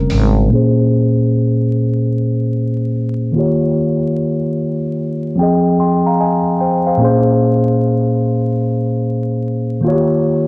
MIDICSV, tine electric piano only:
0, 0, Header, 1, 2, 480
1, 0, Start_track
1, 0, Tempo, 810811
1, 304, Time_signature, 4, 2, 24, 8
1, 6201, End_track
2, 0, Start_track
2, 0, Title_t, "Tine electric piano"
2, 0, Program_c, 0, 4
2, 0, Control_c, 0, 64, 127
2, 0, Note_on_c, 0, 49, 58
2, 0, Note_on_c, 0, 55, 51
2, 0, Note_on_c, 0, 60, 55
2, 0, Note_on_c, 0, 61, 63
2, 0, Note_on_c, 0, 70, 86
2, 284, Note_on_c, 0, 46, 75
2, 295, Note_on_c, 0, 58, 63
2, 306, Note_off_c, 0, 61, 0
2, 306, Note_on_c, 0, 61, 56
2, 311, Control_c, 0, 64, 0
2, 313, Note_off_c, 0, 49, 0
2, 315, Note_off_c, 0, 70, 0
2, 316, Note_off_c, 0, 55, 0
2, 316, Note_off_c, 0, 60, 0
2, 317, Note_on_c, 0, 68, 63
2, 327, Note_on_c, 0, 72, 75
2, 417, Control_c, 0, 64, 127
2, 1951, Note_off_c, 0, 46, 0
2, 1956, Note_off_c, 0, 58, 0
2, 1961, Note_off_c, 0, 61, 0
2, 1966, Note_on_c, 0, 51, 65
2, 1967, Note_off_c, 0, 68, 0
2, 1972, Note_off_c, 0, 72, 0
2, 1975, Note_on_c, 0, 58, 55
2, 1988, Note_on_c, 0, 65, 60
2, 1991, Control_c, 0, 64, 0
2, 1999, Note_on_c, 0, 67, 60
2, 2009, Note_on_c, 0, 73, 64
2, 2113, Control_c, 0, 64, 127
2, 3152, Note_off_c, 0, 51, 0
2, 3156, Note_off_c, 0, 58, 0
2, 3162, Note_off_c, 0, 65, 0
2, 3168, Note_off_c, 0, 67, 0
2, 3171, Note_on_c, 0, 53, 69
2, 3173, Note_off_c, 0, 73, 0
2, 3180, Note_on_c, 0, 60, 61
2, 3191, Control_c, 0, 64, 0
2, 3192, Note_on_c, 0, 79, 66
2, 3202, Note_on_c, 0, 68, 65
2, 3213, Note_on_c, 0, 75, 76
2, 3289, Control_c, 0, 64, 127
2, 3429, Note_off_c, 0, 79, 0
2, 3433, Note_on_c, 0, 84, 53
2, 3434, Note_off_c, 0, 75, 0
2, 3436, Note_on_c, 0, 79, 45
2, 3578, Note_off_c, 0, 84, 0
2, 3579, Note_off_c, 0, 79, 0
2, 3590, Note_on_c, 0, 82, 65
2, 3593, Note_on_c, 0, 77, 55
2, 3665, Note_off_c, 0, 82, 0
2, 3666, Note_off_c, 0, 77, 0
2, 3672, Note_on_c, 0, 80, 64
2, 3673, Note_on_c, 0, 75, 59
2, 3896, Note_off_c, 0, 80, 0
2, 3897, Note_off_c, 0, 75, 0
2, 3909, Note_on_c, 0, 79, 56
2, 3913, Note_on_c, 0, 72, 50
2, 4056, Note_off_c, 0, 79, 0
2, 4058, Note_off_c, 0, 72, 0
2, 4065, Note_on_c, 0, 77, 59
2, 4068, Note_on_c, 0, 72, 49
2, 4118, Note_off_c, 0, 53, 0
2, 4123, Note_off_c, 0, 60, 0
2, 4128, Note_on_c, 0, 46, 69
2, 4134, Note_off_c, 0, 68, 0
2, 4138, Note_on_c, 0, 58, 67
2, 4150, Note_on_c, 0, 61, 63
2, 4151, Control_c, 0, 64, 0
2, 4160, Note_on_c, 0, 68, 61
2, 4164, Note_off_c, 0, 72, 0
2, 4171, Note_on_c, 0, 72, 81
2, 4254, Control_c, 0, 64, 127
2, 4291, Note_off_c, 0, 77, 0
2, 5792, Note_off_c, 0, 46, 0
2, 5797, Note_off_c, 0, 58, 0
2, 5803, Note_off_c, 0, 61, 0
2, 5807, Note_on_c, 0, 51, 67
2, 5809, Note_off_c, 0, 68, 0
2, 5814, Note_off_c, 0, 72, 0
2, 5817, Note_on_c, 0, 58, 64
2, 5828, Note_on_c, 0, 65, 65
2, 5833, Control_c, 0, 64, 0
2, 5840, Note_on_c, 0, 66, 54
2, 5850, Note_on_c, 0, 73, 70
2, 5877, Note_on_c, 0, 67, 67
2, 5882, Note_off_c, 0, 66, 0
2, 5952, Control_c, 0, 64, 127
2, 6201, Note_off_c, 0, 51, 0
2, 6201, Note_off_c, 0, 58, 0
2, 6201, Note_off_c, 0, 65, 0
2, 6201, Note_off_c, 0, 67, 0
2, 6201, Note_off_c, 0, 73, 0
2, 6201, End_track
0, 0, End_of_file